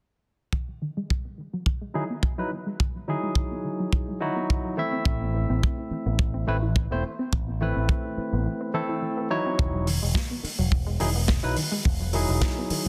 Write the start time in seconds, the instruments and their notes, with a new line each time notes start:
0.53 synth arpeggio sound D#3, kick
0.68 synth arpeggio sound F#3
0.82 synth arpeggio sound D#3
0.97 synth arpeggio sound G#3
1.10 synth arpeggio sound D#3, kick
1.25 synth arpeggio sound B3
1.38 synth arpeggio sound D#3
1.53 synth arpeggio sound F#3
1.66 synth arpeggio sound D#3, kick
1.81 synth arpeggio sound G#3
1.94 synth arpeggio sound D#3, tine electric piano F#3 D#4 E4 G#4
2.10 synth arpeggio sound B3
2.23 synth arpeggio sound D#3, kick
2.38 tine electric piano F#3 D#4 E4 B4, synth arpeggio sound F#3
2.51 synth arpeggio sound D#3
2.66 synth arpeggio sound G#3
2.80 synth arpeggio sound D#3, kick
2.95 synth arpeggio sound F#3
3.08 synth arpeggio sound D#3, tine electric piano F#3 D#4 E4 G#4
3.23 synth arpeggio sound G#3
3.35 synth arpeggio sound D#3, kick
3.51 synth arpeggio sound B3
3.64 synth arpeggio sound D#3
3.80 synth arpeggio sound F#3
3.93 synth arpeggio sound D#3, kick
4.08 synth arpeggio sound G#3
4.20 synth arpeggio sound D#3, tine electric piano F#3 D#4 E4 F#4
4.36 synth arpeggio sound B3
4.49 synth arpeggio sound D#3, kick
4.65 synth arpeggio sound F#3
4.77 synth arpeggio sound E3, tine electric piano A3 C4 E4 E5
4.92 synth arpeggio sound C4
5.05 picked electric bass A1, synth arpeggio sound E3, kick
5.21 synth arpeggio sound B3
5.34 synth arpeggio sound E3
5.50 picked electric bass A1, synth arpeggio sound C4
5.63 kick
5.78 synth arpeggio sound E4
5.91 synth arpeggio sound E3, muted picked electric bass stroke
6.06 picked electric bass A1, synth arpeggio sound B3
6.19 synth arpeggio sound E3, kick
6.34 synth arpeggio sound C4
6.47 picked electric bass A1, synth arpeggio sound E3, tine electric piano A3 C4 E4 B4
6.62 synth arpeggio sound E4
6.76 synth arpeggio sound E3, kick
6.91 picked electric bass E1, tine electric piano A3 C4 E4 C5, synth arpeggio sound B3
7.04 synth arpeggio sound E3
7.19 synth arpeggio sound C4
7.32 picked electric bass A1, synth arpeggio sound E3, kick
7.48 synth arpeggio sound B3
7.60 synth arpeggio sound E3, tine electric piano A3 C4 E4 B4
7.76 picked electric bass A1, synth arpeggio sound C4
7.89 synth arpeggio sound E3, kick
8.05 synth arpeggio sound E4
8.18 synth arpeggio sound E3, muted picked electric bass stroke
8.33 picked electric bass A1, synth arpeggio sound B3
8.46 synth arpeggio sound E3
8.61 synth arpeggio sound C4
8.74 synth arpeggio sound E3, tine electric piano A3 C4 E4 A4
8.89 synth arpeggio sound E4
9.02 synth arpeggio sound E3
9.17 synth arpeggio sound B3
9.30 synth arpeggio sound E3, tine electric piano F#3 D#4 E4 C#5
9.46 synth arpeggio sound C4
9.59 picked electric bass E1, synth arpeggio sound D#3, kick
9.74 synth arpeggio sound F#3
9.87 synth arpeggio sound D#3, open hi-hat
10.02 picked electric bass E1, synth arpeggio sound G#3
10.15 synth arpeggio sound D#3, kick, snare
10.31 synth arpeggio sound B3
10.43 synth arpeggio sound D#3, muted picked electric bass stroke, open hi-hat
10.59 picked electric bass E1, synth arpeggio sound F#3
10.72 synth arpeggio sound D#3, kick
10.87 synth arpeggio sound G#3
11.00 picked electric bass E1, synth arpeggio sound D#3, tine electric piano F#3 D#4 E4 G#4, open hi-hat
11.16 synth arpeggio sound B3
11.28 synth arpeggio sound D#3, kick, snare
11.43 picked electric bass B1, tine electric piano F#3 D#4 E4 B4, synth arpeggio sound F#3
11.57 synth arpeggio sound D#3, open hi-hat
11.72 synth arpeggio sound G#3
11.85 picked electric bass E1, synth arpeggio sound D#3, kick
12.01 synth arpeggio sound F#3
12.13 synth arpeggio sound D#3, tine electric piano F#3 D#4 E4 G#4, open hi-hat
12.29 picked electric bass E1, synth arpeggio sound G#3
12.42 kick, snare
12.58 synth arpeggio sound B3
12.70 synth arpeggio sound D#3, muted picked electric bass stroke, open hi-hat